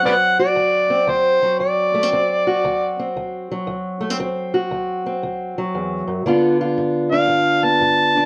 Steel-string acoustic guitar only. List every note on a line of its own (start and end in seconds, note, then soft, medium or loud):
0.00 1.42 F#3 soft
0.05 0.53 D2 medium
0.05 0.90 C4 medium
0.39 2.16 F#4 medium
0.56 1.04 D2 medium
0.90 1.94 C4 soft
1.07 1.56 D2 medium
1.43 3.49 F#3 soft
1.60 2.08 D2 medium
1.94 2.03 A3 medium
2.03 2.11 C4 soft
2.12 2.60 D2 medium
2.12 2.99 C4 medium
2.47 4.17 F#4 medium
2.64 3.12 D2 medium
2.99 4.00 C4 soft
3.17 3.64 D2 medium
3.52 5.57 F#3 soft
3.67 4.15 D2 medium
4.01 4.10 A3 medium
4.10 4.18 C4 soft
4.20 4.67 D2 medium
4.20 5.05 C4 medium
4.54 6.24 F#4 medium
4.71 5.19 D2 medium
5.06 6.24 C4 medium
5.23 5.71 D2 medium
5.58 6.26 F#3 soft
5.75 6.07 E2 medium
6.07 6.25 F#2 soft
6.26 6.74 G2 medium
6.26 8.25 D3 medium
6.26 7.62 B3 medium
6.26 7.12 D4 medium
6.26 6.60 F4 medium
6.61 8.25 F4 medium
6.78 7.26 G2 medium
7.12 8.17 D4 medium
7.28 7.76 G2 medium
7.63 8.25 B3 soft
7.81 8.25 G2 medium
8.17 8.25 D4 soft